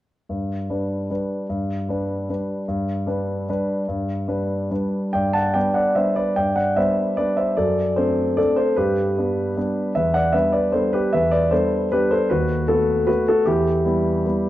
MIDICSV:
0, 0, Header, 1, 2, 480
1, 0, Start_track
1, 0, Key_signature, 1, "major"
1, 0, Tempo, 397614
1, 357, Time_signature, 3, 2, 24, 8
1, 5155, Tempo, 425532
1, 7075, Tempo, 400267
1, 9955, Tempo, 391645
1, 17457, End_track
2, 0, Start_track
2, 0, Title_t, "Grand piano"
2, 0, Program_c, 0, 0
2, 355, Note_on_c, 0, 43, 29
2, 605, Control_c, 0, 64, 127
2, 828, Note_off_c, 0, 43, 0
2, 842, Note_on_c, 0, 55, 24
2, 846, Note_on_c, 0, 62, 24
2, 850, Note_on_c, 0, 71, 26
2, 1280, Note_off_c, 0, 55, 0
2, 1282, Note_off_c, 0, 62, 0
2, 1284, Note_off_c, 0, 71, 0
2, 1333, Note_on_c, 0, 55, 25
2, 1335, Note_on_c, 0, 62, 24
2, 1341, Control_c, 0, 64, 0
2, 1345, Note_on_c, 0, 71, 26
2, 1758, Note_off_c, 0, 55, 0
2, 1760, Note_off_c, 0, 62, 0
2, 1765, Note_off_c, 0, 71, 0
2, 1804, Note_on_c, 0, 43, 33
2, 2034, Control_c, 0, 64, 127
2, 2258, Note_off_c, 0, 43, 0
2, 2280, Note_on_c, 0, 55, 27
2, 2290, Note_on_c, 0, 62, 26
2, 2295, Note_on_c, 0, 71, 29
2, 2717, Note_off_c, 0, 55, 0
2, 2723, Note_off_c, 0, 62, 0
2, 2725, Note_off_c, 0, 71, 0
2, 2770, Note_on_c, 0, 55, 25
2, 2774, Note_on_c, 0, 62, 27
2, 2780, Control_c, 0, 64, 0
2, 2783, Note_on_c, 0, 71, 27
2, 3189, Note_off_c, 0, 55, 0
2, 3191, Note_off_c, 0, 62, 0
2, 3196, Note_off_c, 0, 71, 0
2, 3237, Note_on_c, 0, 43, 36
2, 3460, Control_c, 0, 64, 127
2, 3697, Note_off_c, 0, 43, 0
2, 3700, Note_on_c, 0, 55, 30
2, 3710, Note_on_c, 0, 62, 32
2, 3714, Note_on_c, 0, 71, 34
2, 4152, Note_off_c, 0, 55, 0
2, 4157, Note_off_c, 0, 62, 0
2, 4159, Note_off_c, 0, 71, 0
2, 4217, Note_on_c, 0, 55, 30
2, 4217, Note_on_c, 0, 62, 30
2, 4218, Control_c, 0, 64, 0
2, 4224, Note_on_c, 0, 71, 33
2, 4640, Note_off_c, 0, 55, 0
2, 4640, Note_off_c, 0, 62, 0
2, 4644, Note_off_c, 0, 71, 0
2, 4685, Note_on_c, 0, 43, 38
2, 4915, Control_c, 0, 64, 127
2, 5142, Note_off_c, 0, 43, 0
2, 5165, Note_on_c, 0, 55, 28
2, 5169, Note_on_c, 0, 62, 27
2, 5175, Note_on_c, 0, 71, 31
2, 5603, Note_off_c, 0, 55, 0
2, 5605, Note_off_c, 0, 62, 0
2, 5608, Note_off_c, 0, 71, 0
2, 5649, Note_on_c, 0, 55, 27
2, 5649, Note_on_c, 0, 62, 28
2, 5656, Note_on_c, 0, 71, 28
2, 5658, Control_c, 0, 64, 0
2, 6098, Note_off_c, 0, 55, 0
2, 6098, Note_off_c, 0, 62, 0
2, 6101, Note_off_c, 0, 71, 0
2, 6124, Note_on_c, 0, 79, 49
2, 6137, Note_on_c, 0, 43, 32
2, 6137, Note_on_c, 0, 74, 39
2, 6352, Note_off_c, 0, 74, 0
2, 6356, Note_on_c, 0, 81, 56
2, 6357, Control_c, 0, 64, 127
2, 6362, Note_off_c, 0, 79, 0
2, 6370, Note_on_c, 0, 78, 38
2, 6585, Note_on_c, 0, 79, 50
2, 6588, Note_off_c, 0, 78, 0
2, 6589, Note_off_c, 0, 43, 0
2, 6597, Note_off_c, 0, 81, 0
2, 6598, Note_on_c, 0, 74, 38
2, 6600, Note_on_c, 0, 55, 23
2, 6600, Note_on_c, 0, 59, 24
2, 6607, Note_on_c, 0, 62, 29
2, 6621, Control_c, 0, 64, 0
2, 6815, Note_on_c, 0, 78, 46
2, 6817, Note_off_c, 0, 74, 0
2, 6830, Note_off_c, 0, 79, 0
2, 6834, Note_on_c, 0, 74, 36
2, 7027, Note_off_c, 0, 55, 0
2, 7027, Note_off_c, 0, 59, 0
2, 7030, Note_off_c, 0, 62, 0
2, 7052, Note_on_c, 0, 76, 43
2, 7055, Note_off_c, 0, 74, 0
2, 7060, Note_on_c, 0, 55, 23
2, 7061, Note_on_c, 0, 72, 38
2, 7062, Note_off_c, 0, 78, 0
2, 7068, Note_on_c, 0, 62, 28
2, 7069, Note_on_c, 0, 59, 23
2, 7295, Note_off_c, 0, 72, 0
2, 7300, Note_on_c, 0, 74, 51
2, 7307, Note_off_c, 0, 76, 0
2, 7310, Note_on_c, 0, 71, 35
2, 7501, Note_off_c, 0, 55, 0
2, 7505, Note_off_c, 0, 59, 0
2, 7505, Note_off_c, 0, 62, 0
2, 7535, Note_off_c, 0, 71, 0
2, 7537, Note_off_c, 0, 74, 0
2, 7543, Note_on_c, 0, 79, 52
2, 7553, Note_on_c, 0, 43, 30
2, 7555, Note_on_c, 0, 74, 43
2, 7768, Note_off_c, 0, 74, 0
2, 7777, Note_on_c, 0, 78, 50
2, 7785, Note_off_c, 0, 79, 0
2, 7786, Note_on_c, 0, 74, 36
2, 7788, Control_c, 0, 64, 127
2, 8012, Note_off_c, 0, 74, 0
2, 8016, Note_off_c, 0, 43, 0
2, 8024, Note_off_c, 0, 78, 0
2, 8024, Note_on_c, 0, 76, 52
2, 8034, Note_on_c, 0, 55, 24
2, 8037, Note_on_c, 0, 59, 26
2, 8038, Note_on_c, 0, 72, 39
2, 8044, Note_on_c, 0, 62, 27
2, 8045, Control_c, 0, 64, 0
2, 8468, Note_off_c, 0, 55, 0
2, 8470, Note_off_c, 0, 59, 0
2, 8474, Note_off_c, 0, 62, 0
2, 8484, Note_off_c, 0, 72, 0
2, 8511, Note_off_c, 0, 76, 0
2, 8511, Note_on_c, 0, 74, 51
2, 8521, Note_on_c, 0, 55, 24
2, 8524, Note_on_c, 0, 71, 36
2, 8527, Note_on_c, 0, 59, 25
2, 8532, Note_on_c, 0, 62, 26
2, 8744, Note_off_c, 0, 71, 0
2, 8748, Note_on_c, 0, 76, 48
2, 8754, Note_off_c, 0, 74, 0
2, 8760, Note_on_c, 0, 72, 39
2, 8948, Note_off_c, 0, 55, 0
2, 8952, Note_off_c, 0, 59, 0
2, 8954, Note_off_c, 0, 62, 0
2, 8978, Note_off_c, 0, 72, 0
2, 8988, Note_off_c, 0, 76, 0
2, 8988, Note_on_c, 0, 74, 48
2, 8997, Note_on_c, 0, 42, 32
2, 8997, Note_on_c, 0, 69, 35
2, 9230, Control_c, 0, 64, 127
2, 9438, Note_off_c, 0, 69, 0
2, 9457, Note_off_c, 0, 42, 0
2, 9462, Note_on_c, 0, 72, 47
2, 9466, Note_off_c, 0, 74, 0
2, 9475, Note_on_c, 0, 69, 35
2, 9477, Note_on_c, 0, 57, 25
2, 9481, Note_on_c, 0, 60, 26
2, 9482, Note_on_c, 0, 62, 29
2, 9911, Note_off_c, 0, 57, 0
2, 9913, Note_off_c, 0, 60, 0
2, 9914, Note_off_c, 0, 62, 0
2, 9924, Note_off_c, 0, 69, 0
2, 9950, Note_on_c, 0, 74, 50
2, 9952, Note_off_c, 0, 72, 0
2, 9956, Note_on_c, 0, 57, 26
2, 9965, Note_on_c, 0, 60, 26
2, 9966, Note_on_c, 0, 69, 39
2, 9968, Note_on_c, 0, 62, 27
2, 9971, Control_c, 0, 64, 0
2, 10188, Note_on_c, 0, 72, 53
2, 10191, Note_off_c, 0, 69, 0
2, 10200, Note_off_c, 0, 74, 0
2, 10210, Note_on_c, 0, 69, 39
2, 10395, Note_off_c, 0, 57, 0
2, 10400, Note_off_c, 0, 60, 0
2, 10401, Note_off_c, 0, 62, 0
2, 10430, Note_off_c, 0, 69, 0
2, 10433, Note_on_c, 0, 71, 50
2, 10436, Note_off_c, 0, 72, 0
2, 10443, Note_on_c, 0, 43, 33
2, 10446, Note_on_c, 0, 67, 36
2, 10651, Control_c, 0, 64, 127
2, 10912, Note_off_c, 0, 43, 0
2, 10938, Note_on_c, 0, 55, 25
2, 10949, Note_on_c, 0, 62, 28
2, 10950, Note_on_c, 0, 59, 25
2, 11376, Note_off_c, 0, 55, 0
2, 11382, Note_off_c, 0, 62, 0
2, 11383, Note_off_c, 0, 59, 0
2, 11419, Note_on_c, 0, 55, 25
2, 11424, Note_on_c, 0, 59, 25
2, 11426, Note_on_c, 0, 62, 30
2, 11429, Control_c, 0, 64, 0
2, 11847, Note_off_c, 0, 55, 0
2, 11847, Note_off_c, 0, 67, 0
2, 11849, Note_off_c, 0, 59, 0
2, 11851, Note_off_c, 0, 62, 0
2, 11881, Note_off_c, 0, 71, 0
2, 11887, Note_on_c, 0, 76, 53
2, 11899, Note_on_c, 0, 40, 32
2, 11899, Note_on_c, 0, 71, 39
2, 12111, Note_off_c, 0, 71, 0
2, 12113, Control_c, 0, 64, 127
2, 12120, Note_off_c, 0, 76, 0
2, 12120, Note_on_c, 0, 78, 56
2, 12133, Note_on_c, 0, 74, 44
2, 12346, Note_on_c, 0, 76, 52
2, 12347, Note_off_c, 0, 40, 0
2, 12347, Note_off_c, 0, 74, 0
2, 12357, Note_off_c, 0, 78, 0
2, 12357, Note_on_c, 0, 55, 27
2, 12363, Note_on_c, 0, 71, 42
2, 12366, Note_on_c, 0, 59, 27
2, 12367, Note_on_c, 0, 62, 26
2, 12371, Control_c, 0, 64, 0
2, 12585, Note_off_c, 0, 71, 0
2, 12591, Note_on_c, 0, 74, 48
2, 12593, Note_off_c, 0, 76, 0
2, 12607, Note_on_c, 0, 71, 36
2, 12796, Note_off_c, 0, 55, 0
2, 12801, Note_off_c, 0, 59, 0
2, 12801, Note_off_c, 0, 62, 0
2, 12832, Note_off_c, 0, 71, 0
2, 12834, Note_on_c, 0, 72, 51
2, 12841, Note_off_c, 0, 74, 0
2, 12848, Note_on_c, 0, 55, 26
2, 12855, Note_on_c, 0, 69, 36
2, 12858, Note_on_c, 0, 59, 27
2, 12861, Note_on_c, 0, 62, 28
2, 13079, Note_off_c, 0, 69, 0
2, 13085, Note_off_c, 0, 72, 0
2, 13086, Note_on_c, 0, 71, 48
2, 13101, Note_on_c, 0, 67, 43
2, 13284, Note_off_c, 0, 55, 0
2, 13290, Note_off_c, 0, 59, 0
2, 13291, Note_off_c, 0, 62, 0
2, 13320, Note_off_c, 0, 67, 0
2, 13329, Note_off_c, 0, 71, 0
2, 13329, Note_on_c, 0, 76, 55
2, 13344, Note_on_c, 0, 40, 33
2, 13351, Note_on_c, 0, 71, 42
2, 13543, Control_c, 0, 64, 127
2, 13558, Note_on_c, 0, 74, 56
2, 13559, Note_off_c, 0, 71, 0
2, 13569, Note_off_c, 0, 76, 0
2, 13577, Note_on_c, 0, 71, 39
2, 13795, Note_off_c, 0, 71, 0
2, 13799, Note_on_c, 0, 72, 54
2, 13801, Note_off_c, 0, 40, 0
2, 13802, Note_off_c, 0, 74, 0
2, 13812, Note_on_c, 0, 55, 27
2, 13815, Note_on_c, 0, 59, 27
2, 13815, Note_on_c, 0, 69, 37
2, 13820, Control_c, 0, 64, 0
2, 13820, Note_on_c, 0, 62, 30
2, 14244, Note_off_c, 0, 55, 0
2, 14245, Note_off_c, 0, 59, 0
2, 14248, Note_off_c, 0, 62, 0
2, 14260, Note_off_c, 0, 69, 0
2, 14285, Note_off_c, 0, 72, 0
2, 14298, Note_on_c, 0, 71, 55
2, 14304, Note_on_c, 0, 55, 26
2, 14309, Note_on_c, 0, 67, 37
2, 14318, Note_on_c, 0, 59, 28
2, 14319, Note_on_c, 0, 62, 30
2, 14527, Note_off_c, 0, 67, 0
2, 14532, Note_on_c, 0, 72, 54
2, 14538, Note_off_c, 0, 71, 0
2, 14547, Note_on_c, 0, 69, 43
2, 14730, Note_off_c, 0, 55, 0
2, 14737, Note_off_c, 0, 59, 0
2, 14738, Note_off_c, 0, 62, 0
2, 14761, Note_off_c, 0, 69, 0
2, 14762, Note_on_c, 0, 71, 51
2, 14769, Note_off_c, 0, 72, 0
2, 14772, Note_on_c, 0, 39, 34
2, 14777, Note_on_c, 0, 66, 40
2, 14962, Control_c, 0, 64, 127
2, 15209, Note_off_c, 0, 66, 0
2, 15226, Note_off_c, 0, 39, 0
2, 15234, Note_off_c, 0, 71, 0
2, 15234, Note_on_c, 0, 69, 57
2, 15245, Note_on_c, 0, 57, 26
2, 15247, Note_on_c, 0, 66, 41
2, 15251, Note_on_c, 0, 59, 29
2, 15676, Note_off_c, 0, 57, 0
2, 15679, Note_off_c, 0, 59, 0
2, 15691, Note_off_c, 0, 66, 0
2, 15707, Note_on_c, 0, 71, 49
2, 15715, Note_on_c, 0, 57, 28
2, 15716, Note_on_c, 0, 66, 43
2, 15718, Note_off_c, 0, 69, 0
2, 15721, Note_on_c, 0, 59, 27
2, 15734, Control_c, 0, 64, 0
2, 15942, Note_off_c, 0, 66, 0
2, 15954, Note_off_c, 0, 71, 0
2, 15971, Note_on_c, 0, 69, 61
2, 15980, Note_on_c, 0, 66, 40
2, 16142, Note_off_c, 0, 57, 0
2, 16145, Note_off_c, 0, 59, 0
2, 16182, Note_on_c, 0, 67, 53
2, 16186, Note_off_c, 0, 66, 0
2, 16198, Note_off_c, 0, 69, 0
2, 16198, Note_on_c, 0, 40, 36
2, 16201, Note_on_c, 0, 64, 43
2, 16425, Control_c, 0, 64, 127
2, 16651, Note_off_c, 0, 40, 0
2, 16658, Note_off_c, 0, 64, 0
2, 16667, Note_on_c, 0, 55, 29
2, 16673, Note_on_c, 0, 59, 31
2, 16677, Note_on_c, 0, 64, 32
2, 17106, Note_off_c, 0, 55, 0
2, 17109, Note_off_c, 0, 59, 0
2, 17111, Note_off_c, 0, 64, 0
2, 17162, Note_on_c, 0, 55, 29
2, 17163, Control_c, 0, 64, 0
2, 17164, Note_on_c, 0, 59, 28
2, 17174, Note_on_c, 0, 64, 29
2, 17457, Note_off_c, 0, 55, 0
2, 17457, Note_off_c, 0, 59, 0
2, 17457, Note_off_c, 0, 64, 0
2, 17457, Note_off_c, 0, 67, 0
2, 17457, End_track
0, 0, End_of_file